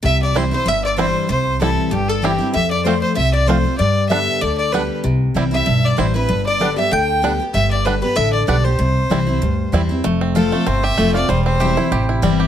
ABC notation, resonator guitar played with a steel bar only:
X:1
M:4/4
L:1/16
Q:"Swing" 1/4=192
K:C
V:1 name="Resonator guitar played with a steel bar"
e2 d2 c2 c2 e2 d2 c4 | c4 A4 G2 A2 G3 z | e2 d2 c2 c2 e2 d2 c4 | d4 e4 d2 d2 B3 z |
z6 e4 d2 c2 B2- | B2 d4 e2 g6 z2 | e2 d2 B2 B2 e2 d2 d2 c2- | c12- c2 z2 |
z16 | z16 |]